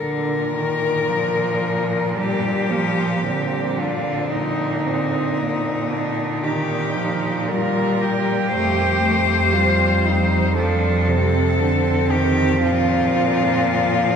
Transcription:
0.00 4.28 A#2 soft
0.00 0.51 D3 soft
0.00 2.19 A#4 medium
0.55 1.10 D#3 soft
1.09 2.17 F3 soft
2.15 2.71 G3 soft
2.15 2.72 D4 soft
2.15 3.81 G4 medium
2.69 3.26 F3 soft
2.69 3.24 A#3 soft
3.24 6.45 D3 soft
3.24 3.80 C4 soft
3.79 4.33 D4 soft
3.79 4.32 F4 soft
4.32 8.54 A#2 soft
4.32 4.87 D#4 soft
4.32 6.45 D#4 medium
4.86 5.41 C4 soft
5.39 5.92 A#3 soft
5.90 6.45 D4 soft
6.44 6.96 D#3 soft
6.44 7.50 D#4 soft
6.44 7.51 G4 medium
6.96 7.52 F3 soft
7.50 8.52 G3 soft
7.50 8.03 F4 soft
7.50 8.51 A#4 medium
8.01 9.54 G4 soft
8.51 12.64 F2 soft
8.51 9.01 A3 soft
8.51 10.52 C5 medium
9.02 9.53 A3 soft
9.52 10.56 G3 soft
9.52 10.07 F4 soft
10.05 10.56 D#4 soft
10.56 11.10 F3 soft
10.56 11.11 D4 soft
10.56 12.13 A4 medium
11.08 11.61 C3 soft
11.08 13.66 C4 soft
11.60 12.13 D3 soft
12.11 12.62 D#3 soft
12.11 12.62 G4 medium
12.63 14.16 A#2 soft
12.63 14.16 F3 soft
12.63 14.16 F4 medium
13.64 14.16 A#3 soft

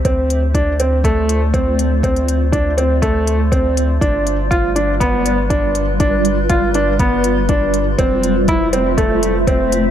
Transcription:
0.00 3.97 A3 medium
0.00 3.97 C5 medium
0.04 3.99 D2 medium
0.04 0.39 C4 medium
0.04 9.91 F4 medium
0.04 7.94 D5 medium
0.04 kick loud
0.04 closed hi-hat soft
0.30 closed hi-hat medium
0.54 0.72 D4 medium
0.54 kick loud
0.54 closed hi-hat soft
0.80 0.97 C4 medium
0.80 closed hi-hat medium
1.04 1.39 A3 medium
1.04 kick medium
1.04 closed hi-hat soft
1.29 closed hi-hat medium
1.54 1.88 C4 medium
1.54 kick loud
1.54 closed hi-hat soft
1.79 closed hi-hat medium
2.03 2.38 C4 medium
2.03 kick loud
2.03 closed hi-hat soft
2.16 closed hi-hat soft
2.28 closed hi-hat medium
2.52 2.70 D4 medium
2.52 kick loud
2.52 closed hi-hat soft
2.78 2.95 C4 medium
2.78 closed hi-hat medium
3.02 3.36 A3 medium
3.02 kick medium
3.02 closed hi-hat soft
3.27 closed hi-hat medium
3.52 3.86 C4 medium
3.52 kick medium
3.52 closed hi-hat soft
3.77 closed hi-hat medium
4.01 7.96 G1 medium
4.01 7.95 G3 medium
4.01 4.36 D4 medium
4.01 7.95 B4 medium
4.01 kick loud
4.01 closed hi-hat soft
4.27 closed hi-hat medium
4.51 4.68 F4 medium
4.51 kick medium
4.51 closed hi-hat soft
4.76 4.93 D4 medium
4.76 closed hi-hat medium
5.00 5.35 B3 medium
5.00 kick medium
5.00 closed hi-hat soft
5.26 closed hi-hat medium
5.50 5.84 D4 medium
5.50 kick medium
5.50 closed hi-hat soft
5.75 closed hi-hat medium
6.00 6.34 D4 medium
6.00 kick medium
6.00 closed hi-hat soft
6.25 closed hi-hat medium
6.50 6.67 F4 medium
6.50 kick medium
6.50 closed hi-hat soft
6.74 6.92 D4 medium
6.74 closed hi-hat medium
6.99 7.34 B3 medium
6.99 kick medium
6.99 closed hi-hat soft
7.24 closed hi-hat medium
7.49 7.83 D4 medium
7.49 kick loud
7.49 closed hi-hat soft
7.74 closed hi-hat medium
7.98 9.91 F1 medium
7.98 9.91 A3 medium
7.98 8.33 C4 medium
7.98 9.91 C5 medium
7.98 9.91 E5 medium
7.98 kick medium
7.98 closed hi-hat soft
8.23 closed hi-hat medium
8.48 8.65 E4 medium
8.48 kick medium
8.48 closed hi-hat soft
8.73 8.90 C4 medium
8.73 closed hi-hat medium
8.97 9.32 A3 medium
8.97 kick medium
8.97 closed hi-hat soft
9.23 closed hi-hat medium
9.47 9.82 C4 medium
9.47 kick loud
9.47 closed hi-hat soft
9.72 closed hi-hat medium

